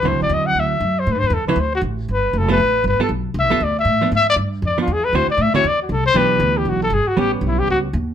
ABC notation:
X:1
M:4/4
L:1/8
Q:"Swing" 1/4=236
K:Dmix
V:1 name="Trumpet"
c d _e f =e3 c | (3B c B A B c F z2 | B2 A B3 B A | z2 e2 d e3 |
e d z2 d ^E ^G B | c d e ^c d F A =c | B3 G F A ^G F | G B, E G F z3 |]
V:2 name="Hollow-body jazz guitar"
[D,F,CE]4- [D,F,CE] z3 | z3 [D,F,CE] z4 | z3 [G,B,=FA] z3 [G,B,FA] | z3 [G,B,=FA] z3 [=F,B,D] |
z4 z [^E,B,D] z2 | [D,CEF] z2 [D,CEF] z4 | [E,B,DG]4- [E,B,DG] z3 | [G,B,^C]4- [G,B,C] z3 |]
V:3 name="Upright bass" clef=bass
(3D,, C,, A,,, E,,2 D,,2 F,,2 | (3A,, G,, E,, E,, z D,,2 A,,,2 | G,,,2 =F,,,2 A,,,2 G,,, z | B,,,2 (3C,, B,,, G,,, D,,2 A,,2 |
^G,,2 =G,,2 ^E,,2 =E,,2 | D,, z A,, z E,,2 C,,2 | B,,,2 D,,2 B,,,2 G,,, z | A,,,2 B,,,2 ^C,,2 _E,,2 |]